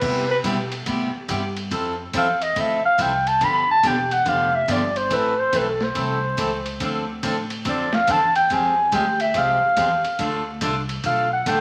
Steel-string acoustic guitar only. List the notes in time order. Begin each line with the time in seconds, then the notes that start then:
0.01 C3 G3 B3 E4 G4
0.44 C3 G3 B3 E4 G4
0.86 C3 G3 B3 E4 G4
1.28 C3 G3 B3 E4 G4
1.71 F3 C4 E4 A4
2.13 F3 C4 E4 A4
2.56 F3 C4 E4 A4
2.98 F3 C4 E4 A4
3.41 D3 F3 B3 D4 G4
3.83 D3 F3 B3 D4 G4
4.25 D3 F3 B3 D4 G4
4.68 D3 F3 B3 D4 G4
5.10 E3 A3 C4 E4 A4
5.53 E3 A3 C4 E4 A4
5.95 E3 A3 C4 E4 A4
6.37 E3 A3 C4 E4 A4
6.80 D3 F3 C4 D4 A4
7.23 D3 F3 C4 D4 A4
7.65 D3 F3 C4 D4 A4
8.07 D3 F3 C4 D4 A4
8.50 F3 G#3 C4 G4
8.92 F3 G#3 C4 G4
9.34 F3 G#3 C4 G4
9.77 F3 G#3 C4 G4
10.19 D3 A3 D4 F4 A4
10.61 D3 A3 D4 F4 A4
11.04 D3 A3 D4 F4 A4
11.46 D3 A3 D4 F4 A4